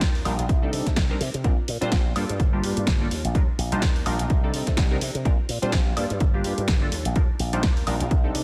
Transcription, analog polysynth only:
0.25 G3 D4 D#4 F4 A#4
0.62 G3 C4 D4 D#4 A4
1.10 G3 C4 D4 D#4 A#4
1.44 G3 C4 D4 F4 A#4
1.81 G3 C4 D4 F4 C5
2.16 G3 A#3 D4 F4 A4
2.53 G3 A#3 D4 F4 G4
3.01 G3 A#3 D4 F4 A4
3.35 G3 D4 D#4 F4 A#4
3.72 G3 D4 D#4 F4 C5
4.06 G3 D4 D#4 F4 A#4
4.43 G3 C4 D4 D#4 A4
4.91 G3 C4 D4 D#4 A#4
5.25 G3 C4 D4 F4 A#4
5.62 G3 C4 D4 F4 C5
5.96 G3 A#3 D4 F4 A4
6.34 G3 A#3 D4 F4 G4
6.81 G3 A#3 D4 F4 A4
7.16 G3 D4 D#4 F4 A#4
7.53 G3 D4 D#4 F4 C5
7.87 G3 D4 D#4 F4 A#4
8.24 G3 C4 D4 D#4 A4

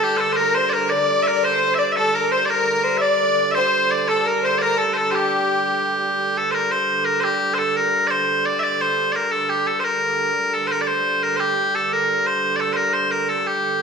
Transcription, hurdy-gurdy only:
Already playing: G2 D3
1.96 G2 D3
6.17 G2 D3
10.35 G2 D3

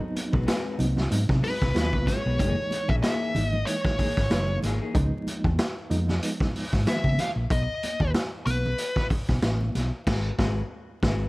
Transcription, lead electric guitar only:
1.44 B4
2.07 C#5
2.89 E5
3.03 E5
3.50 D#5
3.66 C#5
6.89 E5
7.20 F5
7.52 D#5
8.47 B4

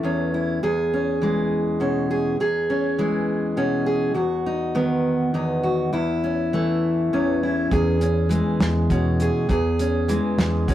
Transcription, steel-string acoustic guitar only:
Already playing: E3 A3 E4
0.03 E2 C#4
0.34 E4
0.63 E2 G#4
0.94 C#4
1.22 E3 G#3
1.80 B2 C#4
2.11 G#4
2.40 E2 G#4
2.70 C#4
2.98 E3 G#3
3.57 B2 C#4
3.86 G#4
4.14 E2 F#4
4.46 D#4
4.75 D#3 B3
5.34 E2 D#4
5.63 F#4
5.93 E2 E4
6.24 C#4
6.53 E3 A3
7.13 E2 C#4
7.43 E4
7.71 E2 G#4
8.02 C#4
8.29 E3 G#3
8.90 B2 C#4
9.22 G#4
9.49 E2 G#4
9.80 C#4
10.08 E3 G#3
10.68 B2 C#4

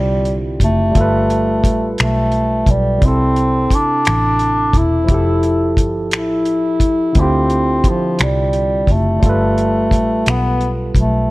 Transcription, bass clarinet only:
Already playing: G3
0.63 A3
2.01 A3
2.70 G3
3.05 C4
3.74 D4
4.77 E4
6.15 E4
7.20 C4
7.89 F3
8.23 G3
8.92 A3
10.30 B3
10.99 A3

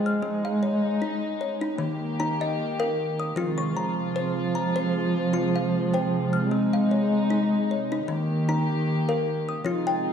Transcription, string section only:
Already playing: G#3 F4
0.23 D#4
1.81 D#3 A#3 G4
3.37 C3 G#3 F4
6.53 D#4
8.08 D#3 A#3 G4
9.67 C3 G#3 F4

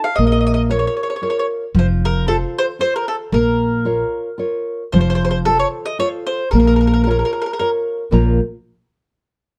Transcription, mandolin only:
0.04 F5
0.16 D#5
0.27 D#5
0.32 D#5
0.41 D#5
0.47 D#5
0.54 D#5
0.71 C#5
0.79 C#5
0.87 C#5
0.97 C#5
1.03 C#5
1.10 C#5
1.16 C#5
1.23 C#5
1.30 C#5
1.39 C#5
1.79 C5
2.05 A#4
2.28 A4
2.59 C5
2.81 C5
2.96 A#4
3.08 A4
3.34 A#4
4.92 C5
5.01 C5
5.10 C5
5.15 C5
5.25 C5
5.31 C5
5.45 A4
5.60 C#5
5.86 D#5
6.00 C#5
6.27 C5
6.51 A#4
6.59 A#4
6.67 A#4
6.76 A#4
6.81 A#4
6.87 A#4
6.93 A#4
7.04 A#4
7.11 A#4
7.19 A#4
7.25 A#4
7.33 A#4
7.42 A#4
7.46 A#4
7.53 A#4
7.59 A#4

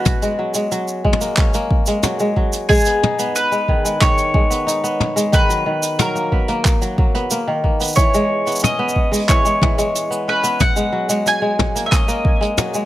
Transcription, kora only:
Already playing: E3 G#3 B3 C#4
0.22 G#3
0.39 F#3
0.55 G#3
0.72 F#3
1.04 G#3
1.21 A#3
1.38 C#4
1.55 A#3
1.88 G#3
2.04 F#3
2.20 G#3
2.36 F#3
2.69 G#3
2.86 B3
3.03 D#4
3.19 B3
3.52 G#3
3.69 D#3
3.85 G#3
4.01 D#3
4.34 G#3
4.50 B3
4.67 D#4
4.84 B3
5.16 G#3
5.32 D#3
5.49 F#3
5.66 D#3
5.99 F#3
6.15 A#3
6.32 B3
6.49 A#3
6.82 F#3
6.99 F#3
7.15 B3
7.31 A#3
7.47 D#3
7.64 A#3
7.80 B3
7.97 E3
8.14 G#3
8.47 B3
8.63 C#4
8.79 B3
9.12 G#3
9.29 E3
9.45 G#3
9.62 E3
9.78 G#3
10.11 B3
10.28 C#4
10.44 B3
10.76 G#3
10.92 F#3
11.09 G#3
11.26 F#3
11.42 G#3
11.75 A#3
11.92 C#4
12.08 A#3
12.41 G#3
12.58 F#3
12.75 G#3

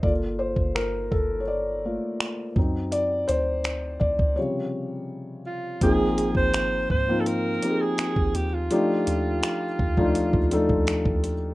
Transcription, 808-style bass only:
0.03 G1
0.57 G1
1.12 G1
2.56 F#2
3.29 D2
4.01 D2
4.19 C#2
5.82 G#1
6.35 G#1
6.90 G#2
8.17 G#1
8.35 D#2
9.07 D#2
9.80 D#2
10.34 D#2
10.70 D#2
11.06 D#2

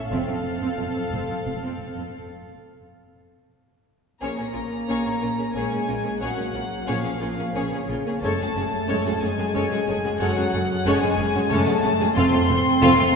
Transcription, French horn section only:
0.11 A3 C4
4.23 A#3
5.57 G#3
6.22 F#3
6.88 F3
7.55 C#3
8.24 A3
9.22 G#3
10.21 F#3
10.88 G#3
11.52 A3
12.18 C4

